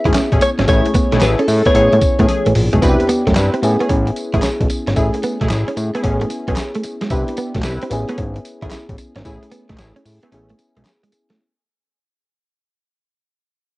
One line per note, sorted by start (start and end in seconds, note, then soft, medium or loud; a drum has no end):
0.00 0.65 B3 medium
0.00 0.65 C#4 medium
0.00 0.66 E4 medium
0.00 0.66 G#4 medium
0.00 0.42 E5 loud
0.05 0.12 G#1 medium
0.05 0.20 A3 medium
0.05 0.21 C#4 medium
0.05 0.12 E4 medium
0.05 0.21 G#4 medium
0.05 kick medium
0.05 closed hi-hat soft
0.14 0.21 A1 medium
0.14 0.28 C#4 medium
0.14 snare loud
0.14 clap medium
0.14 closed hi-hat medium
0.14 tambourine medium
0.32 0.39 A1 medium
0.32 0.47 A3 medium
0.32 0.47 C#4 medium
0.32 0.47 G#4 medium
0.32 kick loud
0.32 closed hi-hat medium
0.41 0.49 C#5 loud
0.41 muted clean electric guitar stroke soft
0.41 closed hi-hat medium
0.41 tambourine medium
0.59 0.66 G#1 medium
0.59 0.67 A3 medium
0.59 0.66 C#4 medium
0.59 0.74 C#4 medium
0.59 0.67 G#4 medium
0.59 snare medium
0.59 closed hi-hat medium
0.67 0.82 A1 loud
0.67 1.73 A3 medium
0.67 0.89 A3 medium
0.67 1.73 C#4 medium
0.67 0.89 E4 medium
0.67 1.73 E4 medium
0.67 0.89 G#4 loud
0.67 1.74 G#4 medium
0.67 1.24 C#5 loud
0.67 kick loud
0.67 closed hi-hat medium
0.67 tambourine medium
0.86 muted clean electric guitar stroke medium
0.86 closed hi-hat medium
0.94 1.08 B3 medium
0.94 kick loud
0.94 closed hi-hat medium
0.94 tambourine medium
1.12 1.20 B1 medium
1.12 1.20 A3 medium
1.12 1.19 A3 medium
1.12 1.21 E4 medium
1.12 1.21 G#4 medium
1.12 snare medium
1.12 closed hi-hat medium
1.21 1.36 A1 loud
1.21 1.42 A3 medium
1.21 1.42 E4 medium
1.21 1.43 G#4 loud
1.21 1.40 B4 medium
1.21 snare loud
1.21 clap medium
1.21 closed hi-hat medium
1.21 tambourine loud
1.39 1.46 C#4 medium
1.39 1.67 A4 medium
1.39 closed hi-hat soft
1.48 1.62 A2 loud
1.48 muted clean electric guitar stroke soft
1.48 open hi-hat medium
1.48 tambourine medium
1.65 1.74 A3 medium
1.65 1.73 B3 medium
1.65 1.81 E4 medium
1.65 1.74 G#4 medium
1.65 1.75 C#5 medium
1.65 kick medium
1.65 closed hi-hat medium
1.74 1.89 A1 loud
1.74 1.96 A3 medium
1.74 2.80 B3 medium
1.74 1.96 C#4 medium
1.74 2.80 C#4 medium
1.74 2.80 E4 medium
1.74 1.96 G#4 medium
1.74 2.81 G#4 medium
1.74 2.52 C#5 medium
1.74 closed hi-hat medium
1.93 2.00 A2 loud
1.93 2.00 A3 medium
1.93 closed hi-hat soft
2.01 muted clean electric guitar stroke medium
2.01 kick loud
2.01 closed hi-hat medium
2.01 tambourine medium
2.19 2.27 A2 loud
2.19 2.28 A3 medium
2.19 2.27 B3 medium
2.19 2.28 C#4 medium
2.19 2.28 G#4 medium
2.19 kick medium
2.19 closed hi-hat medium
2.28 2.49 A3 medium
2.28 2.50 C#4 medium
2.28 2.50 G#4 medium
2.28 closed hi-hat medium
2.28 high tom medium
2.46 2.54 A1 loud
2.46 2.53 A3 medium
2.46 closed hi-hat medium
2.55 2.70 A#1 loud
2.55 muted clean electric guitar stroke soft
2.55 mid tom loud
2.55 open hi-hat loud
2.73 2.80 B1 medium
2.73 2.80 G#3 medium
2.73 2.88 A3 medium
2.73 2.88 C#4 medium
2.73 2.88 G#4 medium
2.73 closed hi-hat medium
2.73 floor tom loud
2.82 2.96 C2 loud
2.82 3.61 B3 medium
2.82 3.07 C4 medium
2.82 3.62 D4 medium
2.82 3.62 E4 medium
2.82 3.08 E4 medium
2.82 2.91 F#4 medium
2.82 3.08 B4 loud
2.82 kick loud
2.82 closed hi-hat medium
2.82 tambourine medium
2.89 3.66 G4 medium
3.00 muted clean electric guitar stroke soft
3.00 closed hi-hat medium
3.09 3.23 B3 medium
3.09 closed hi-hat medium
3.09 tambourine medium
3.27 3.34 F#2 loud
3.27 3.34 A3 medium
3.27 kick medium
3.27 snare medium
3.27 closed hi-hat medium
3.35 3.50 G2 loud
3.35 3.56 C4 medium
3.35 3.56 E4 medium
3.35 3.57 B4 loud
3.35 snare loud
3.35 clap loud
3.35 closed hi-hat medium
3.35 tambourine medium
3.54 3.61 C4 medium
3.54 closed hi-hat soft
3.62 3.77 A2 loud
3.62 4.94 B3 medium
3.62 4.94 C#4 medium
3.62 4.94 E4 medium
3.62 4.95 G#4 medium
3.62 muted clean electric guitar stroke soft
3.62 closed hi-hat medium
3.62 tambourine medium
3.80 3.95 A3 medium
3.80 3.87 B3 medium
3.80 3.95 C#4 medium
3.80 3.95 G#4 medium
3.80 closed hi-hat soft
3.89 4.11 A1 loud
3.89 4.03 C#4 medium
3.89 kick medium
3.89 closed hi-hat medium
4.07 muted clean electric guitar stroke soft
4.07 closed hi-hat soft
4.16 closed hi-hat medium
4.16 tambourine medium
4.34 4.41 A1 medium
4.34 4.49 A3 medium
4.34 4.49 C#4 medium
4.34 4.41 E4 medium
4.34 4.49 G#4 medium
4.34 kick medium
4.34 closed hi-hat soft
4.42 4.50 B1 medium
4.42 4.57 C#4 medium
4.42 snare loud
4.42 clap medium
4.42 closed hi-hat medium
4.42 tambourine medium
4.61 4.68 B1 medium
4.61 kick loud
4.61 closed hi-hat medium
4.70 muted clean electric guitar stroke soft
4.70 closed hi-hat medium
4.70 tambourine medium
4.87 4.95 G#1 loud
4.87 4.95 C#4 medium
4.87 snare medium
4.87 closed hi-hat soft
4.96 5.11 A1 loud
4.96 6.01 A3 medium
4.96 5.17 A3 medium
4.96 6.01 C#4 medium
4.96 5.17 E4 medium
4.96 6.02 E4 medium
4.96 5.17 G#4 loud
4.96 6.02 G#4 medium
4.96 kick loud
4.96 closed hi-hat medium
4.96 tambourine medium
5.14 muted clean electric guitar stroke soft
5.14 closed hi-hat medium
5.23 5.37 B3 medium
5.23 closed hi-hat medium
5.23 tambourine medium
5.41 5.48 B1 medium
5.41 5.48 A3 medium
5.41 5.49 E4 medium
5.41 5.49 G#4 medium
5.41 kick medium
5.41 snare medium
5.41 closed hi-hat soft
5.50 5.64 A1 loud
5.50 5.70 A3 medium
5.50 5.71 E4 medium
5.50 5.71 G#4 medium
5.50 snare loud
5.50 clap medium
5.50 closed hi-hat medium
5.50 tambourine medium
5.68 5.75 C#4 medium
5.68 closed hi-hat medium
5.77 5.91 A2 medium
5.77 muted clean electric guitar stroke medium
5.77 closed hi-hat medium
5.77 tambourine medium
5.94 6.02 A3 medium
5.94 6.02 B3 medium
5.94 6.10 E4 medium
5.94 6.02 G#4 medium
5.94 closed hi-hat soft
6.02 6.25 A1 loud
6.02 6.24 A3 medium
6.02 7.08 B3 medium
6.02 7.08 C#4 medium
6.02 6.24 C#4 medium
6.02 7.09 E4 medium
6.02 6.24 G#4 medium
6.02 7.09 G#4 medium
6.02 kick loud
6.02 closed hi-hat medium
6.21 6.28 A3 medium
6.21 closed hi-hat soft
6.30 muted clean electric guitar stroke soft
6.30 closed hi-hat medium
6.30 tambourine medium
6.48 6.55 B1 medium
6.48 6.63 A3 medium
6.48 6.55 B3 medium
6.48 6.63 C#4 medium
6.48 6.63 G#4 medium
6.48 kick medium
6.48 closed hi-hat medium
6.56 snare loud
6.56 clap medium
6.56 closed hi-hat medium
6.56 tambourine medium
6.75 6.82 A3 medium
6.75 closed hi-hat medium
6.83 muted clean electric guitar stroke soft
6.83 closed hi-hat medium
6.83 tambourine medium
7.01 7.09 G#3 medium
7.01 snare medium
7.01 closed hi-hat medium
7.10 7.25 C2 loud
7.10 7.89 B3 medium
7.10 7.36 C4 medium
7.10 7.91 D4 medium
7.10 7.36 E4 medium
7.10 7.91 E4 medium
7.10 7.92 G4 medium
7.10 7.36 B4 medium
7.10 kick loud
7.10 closed hi-hat medium
7.10 tambourine medium
7.28 muted clean electric guitar stroke soft
7.28 closed hi-hat medium
7.37 7.51 B3 medium
7.37 closed hi-hat medium
7.37 tambourine medium
7.54 7.62 B1 medium
7.54 7.63 A3 medium
7.54 kick medium
7.54 snare medium
7.54 closed hi-hat soft
7.63 7.79 C2 loud
7.63 7.85 C4 medium
7.63 7.85 E4 medium
7.63 7.85 B4 medium
7.63 snare loud
7.63 clap medium
7.63 closed hi-hat medium
7.63 tambourine medium
7.82 7.89 C4 medium
7.82 closed hi-hat soft
7.90 8.05 A1 loud
7.90 9.22 B3 medium
7.90 9.22 C#4 medium
7.90 9.23 E4 medium
7.90 9.23 G#4 medium
7.90 muted clean electric guitar stroke soft
7.90 closed hi-hat medium
7.90 tambourine medium
8.09 8.24 A3 medium
8.09 8.16 B3 medium
8.09 8.24 C#4 medium
8.09 8.24 G#4 medium
8.09 closed hi-hat medium
8.18 8.39 G#1 loud
8.18 8.32 C#4 medium
8.18 kick medium
8.18 closed hi-hat medium
8.36 muted clean electric guitar stroke soft
8.36 closed hi-hat soft
8.45 closed hi-hat medium
8.45 tambourine medium
8.62 8.70 G#1 medium
8.62 8.77 A3 medium
8.62 8.77 C#4 medium
8.62 8.69 E4 medium
8.62 8.77 G#4 medium
8.62 kick medium
8.62 closed hi-hat medium
8.71 8.78 A1 medium
8.71 8.85 E4 medium
8.71 snare loud
8.71 clap loud
8.71 closed hi-hat medium
8.71 tambourine medium
8.89 8.96 A1 medium
8.89 kick medium
8.89 closed hi-hat medium
8.98 muted clean electric guitar stroke soft
8.98 closed hi-hat medium
8.98 tambourine medium
9.16 9.23 G#1 loud
9.16 9.23 C#4 medium
9.16 snare medium
9.16 closed hi-hat medium
9.24 9.39 A1 loud
9.24 10.29 A3 medium
9.24 9.46 A3 medium
9.24 10.30 C#4 medium
9.24 9.46 E4 medium
9.24 10.30 E4 medium
9.24 9.46 G#4 loud
9.24 10.31 G#4 medium
9.24 kick loud
9.24 closed hi-hat medium
9.24 tambourine medium
9.43 muted clean electric guitar stroke soft
9.43 closed hi-hat medium
9.52 9.65 B3 medium
9.52 closed hi-hat medium
9.52 tambourine medium
9.69 9.77 B1 medium
9.69 9.77 A3 medium
9.69 9.76 A3 medium
9.69 9.77 E4 medium
9.69 9.78 G#4 medium
9.69 kick medium
9.69 snare medium
9.69 closed hi-hat medium
9.78 9.93 A1 loud
9.78 9.99 A3 medium
9.78 9.99 E4 medium
9.78 9.99 G#4 medium
9.78 snare loud
9.78 clap medium
9.78 closed hi-hat medium
9.78 tambourine medium
9.96 10.03 C#4 medium
9.96 closed hi-hat soft
10.05 10.20 A2 loud
10.05 muted clean electric guitar stroke soft
10.05 open hi-hat medium
10.05 tambourine medium
10.23 10.30 A3 medium
10.23 10.30 B3 medium
10.23 10.38 E4 medium
10.23 10.31 G#4 medium
10.23 closed hi-hat soft
10.31 10.54 A1 loud
10.31 10.53 A3 medium
10.31 11.37 B3 medium
10.31 10.53 C#4 medium
10.31 11.37 C#4 medium
10.31 11.38 E4 medium
10.31 10.53 G#4 medium
10.31 11.38 G#4 medium
10.31 closed hi-hat medium
10.50 10.57 A3 medium
10.50 closed hi-hat soft
10.59 muted clean electric guitar stroke soft
10.59 closed hi-hat medium
10.59 tambourine medium
10.76 10.84 B1 medium
10.76 10.84 G#3 medium
10.76 10.91 A3 medium
10.76 10.92 C#4 medium
10.76 10.92 G#4 medium
10.76 closed hi-hat medium
10.85 snare loud
10.85 clap medium
10.85 closed hi-hat medium
10.85 tambourine medium
11.03 11.10 G#3 medium
11.03 closed hi-hat medium
11.12 muted clean electric guitar stroke soft
11.12 closed hi-hat medium
11.12 tambourine medium
11.30 11.37 A3 medium
11.30 snare medium
11.30 closed hi-hat medium